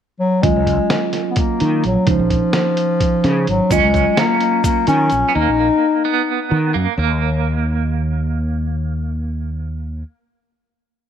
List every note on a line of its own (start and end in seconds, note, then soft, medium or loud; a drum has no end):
0.20 0.44 F#3 medium
0.42 0.54 D#2 medium
0.42 2.03 F#3 medium
0.42 1.13 G#3 loud
0.42 2.04 C#4 medium
0.42 2.04 F4 medium
0.42 kick loud
0.42 closed hi-hat medium
0.56 0.77 C#2 medium
0.67 kick medium
0.67 closed hi-hat medium
0.90 snare medium
0.90 closed hi-hat medium
1.13 snare soft
1.13 closed hi-hat medium
1.30 1.40 B3 medium
1.36 1.85 A#3 medium
1.36 kick loud
1.36 closed hi-hat medium
1.60 1.82 D#3 medium
1.60 closed hi-hat medium
1.84 1.95 A#1 medium
1.84 2.07 F#3 medium
1.84 closed hi-hat medium
2.06 2.18 C#2 medium
2.06 3.67 F3 medium
2.06 3.45 F3 medium
2.06 3.68 C#4 medium
2.06 3.68 D#4 medium
2.06 kick loud
2.06 closed hi-hat medium
2.19 2.40 A#1 medium
2.30 kick medium
2.30 closed hi-hat medium
2.53 snare medium
2.53 closed hi-hat medium
2.77 closed hi-hat medium
3.00 kick medium
3.00 closed hi-hat medium
3.24 3.45 C#3 loud
3.24 snare soft
3.24 closed hi-hat medium
3.47 3.59 G#1 medium
3.47 3.73 F#3 medium
3.47 closed hi-hat medium
3.69 3.82 D#2 medium
3.69 5.31 F#3 medium
3.69 4.20 G#3 medium
3.69 5.31 C#4 medium
3.69 5.28 C#4 loud
3.69 5.32 F4 medium
3.69 kick medium
3.69 closed hi-hat medium
3.69 shaker medium
3.84 4.04 C#2 medium
3.94 kick medium
3.94 closed hi-hat medium
3.94 shaker soft
4.17 4.64 A#3 medium
4.17 snare loud
4.17 closed hi-hat medium
4.41 closed hi-hat medium
4.64 4.87 A#3 medium
4.64 kick loud
4.64 closed hi-hat medium
4.64 shaker medium
4.87 5.09 D#3 loud
4.87 5.31 C#4 loud
4.87 closed hi-hat medium
4.87 shaker soft
5.10 5.22 A#1 medium
5.10 closed hi-hat medium
5.10 shaker soft
5.29 5.35 B3 medium
5.35 5.46 D#2 loud
5.35 6.05 A#3 medium
5.35 6.48 D#4 loud
5.48 5.68 A#1 medium
6.05 6.74 B3 medium
6.51 6.72 D#3 medium
6.74 6.85 F#2 medium
6.74 6.96 A#3 medium
6.97 10.02 D#2 medium
6.97 10.03 A#3 medium